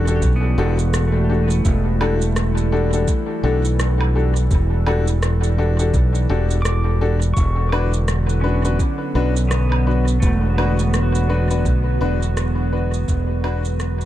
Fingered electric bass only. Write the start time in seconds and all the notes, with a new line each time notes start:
Already playing: E1
0.22 B1
0.58 E1
1.65 E1
3.43 B1
4.51 E1
5.94 B1
6.29 E1
7.37 E1
9.15 B1
10.22 E1
11.65 B1
12.01 E1
13.08 E1